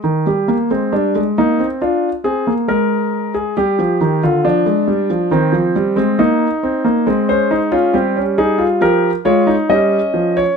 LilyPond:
<<
  \new Staff \with { instrumentName = "Grand piano" } { \time 4/4 \key c \phrygian \tempo 4 = 68 << { r1 | r1 | r16 c''8 f'16 g'8 aes'8 bes'8 des''8 ees''8. des''16 | } \\ { r16 g'8 c'16 d'8 ees'8 f'8 aes'8 bes'8. aes'16 | g'8. f'16 d'4 c'8. c'16 ees'4 | c'16 des'16 ees'16 des'16 c'16 des'16 ees'16 f'16 g'8 f'16 ees'16 des'4 | } >> }
  \new Staff \with { instrumentName = "Grand piano" } { \clef bass \time 4/4 \key c \phrygian ees16 g16 bes16 aes16 g16 aes16 bes16 c'16 d'8 c'16 bes16 aes4 | g16 f16 ees16 d16 f16 aes16 g16 f16 ees16 f16 g16 aes16 bes8 c'16 bes16 | aes4 g4 f8 aes8 g8 f8 | }
>>